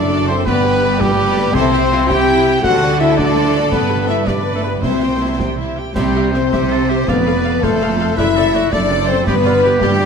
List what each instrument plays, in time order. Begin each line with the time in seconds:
Already playing: double bass section F#1, cello section F#2, french horn section D4, viola section A4 E5, violin section A4 D5, trumpet D5
0.11 viola section F#4 D5
0.28 french horn section C4, viola section A4 E5, violin section C5, trumpet C5
0.46 double bass section G1, cello section G2, french horn section B3, violin section G4 B4, trumpet B4, viola section B4 D5, concert bass drum, snare
0.65 viola section G4 B4
0.84 viola section B4 D5
0.99 french horn section G3, violin section G4 B4, trumpet G4, viola section G4 B4, concert bass drum, snare
1.19 viola section B4 D5
1.37 viola section G4 B4
1.54 double bass section C2, cello section C3, french horn section C4, viola section E4 E5, violin section A4 C5, trumpet C5, concert bass drum, snare, crash
1.73 violin section G4, viola section G4 G5
1.91 viola section E4 E5, violin section F4, snare
2.09 violin section E4 G5, viola section G4 G5, french horn section G4, trumpet G5, concert bass drum, snare
2.28 viola section E4 E5
2.46 viola section G4 G5
2.62 double bass section D2, cello section D3, french horn section F#4, violin section A4 F#5, viola section A4 C5, trumpet F#5, concert bass drum, snare
2.83 viola section F#4 D5
2.99 french horn section E4, viola section A4 C5, violin section E5, trumpet E5
3.17 french horn section D4, viola section F#4 D5, violin section D5, trumpet D5, concert bass drum, snare
3.36 viola section A4 C5
3.54 viola section F#4 D5
3.72 double bass section G1, cello section G2, french horn section B3, violin section B4, trumpet B4, viola section B4 D5, concert bass drum, snare
3.90 viola section G4 B4
4.08 french horn section E4, viola section B4 D5, violin section E5, trumpet E5, snare
4.26 french horn section D4, viola section G4 B4, violin section B4 D5, trumpet D5, concert bass drum, snare
4.46 viola section B4 D5
4.54 french horn section A3, violin section A4, trumpet A4
4.63 french horn section B3, viola section G4 B4, violin section B4, trumpet B4
4.82 double bass section C2, cello section C3, french horn section C4, viola section E4 E5, violin section C5, trumpet C5, concert bass drum, snare
5.01 viola section G4 G5
5.20 viola section E4 E5
5.39 viola section G4 G5, concert bass drum, snare
5.58 viola section E4 E5
5.77 viola section G4 G5
5.94 double bass section C2, cello section C3, french horn section G3, violin section G4, viola section G4 E5, flute section G4, oboe C5, concert bass drum, snare, crash
6.15 viola section G4 E5
6.33 french horn section C4, viola section G4 E5, violin section C5, flute section C5, snare
6.52 double bass section C2, cello section C3, viola section G4 E5, oboe G4, concert bass drum, snare
6.70 viola section G4 E5, oboe A4
6.89 viola section G4 E5, oboe G4
7.07 double bass section F1, cello section F2, french horn section B3, viola section A4 F5, violin section B4, flute section B4, oboe D5, concert bass drum, snare
7.26 viola section A4 F5
7.44 viola section A4 F5
7.62 double bass section F1, cello section F2, french horn section A3, violin section A4, viola section A4 F5, flute section A4, oboe C5, concert bass drum, snare
7.81 viola section A4 F5
8.00 viola section A4 F5
8.17 double bass section F#1, cello section F#2, french horn section E4, viola section A4 D5, oboe B4, violin section E5, flute section E5, concert bass drum, snare, crash
8.36 oboe A4, viola section A4 D5
8.54 oboe F#4, viola section A4 D5, snare
8.72 double bass section F#1, cello section F#2, french horn section D4, oboe A4, viola section A4 D5, violin section D5, flute section D5, concert bass drum, snare
8.91 viola section A4 D5
9.07 french horn section C4, viola section A4 D5, violin section C5, flute section C5
9.25 double bass section G1, cello section G2, french horn section B3, viola section G4 D5, oboe G4, violin section B4, flute section B4, concert bass drum, snare
9.45 oboe F4, viola section G4 D5
9.63 oboe G4, viola section G4 D5
9.80 double bass section G1, cello section G2, french horn section G3, violin section G4, flute section G4, viola section G4 D5, concert bass drum, snare
9.99 viola section G4 D5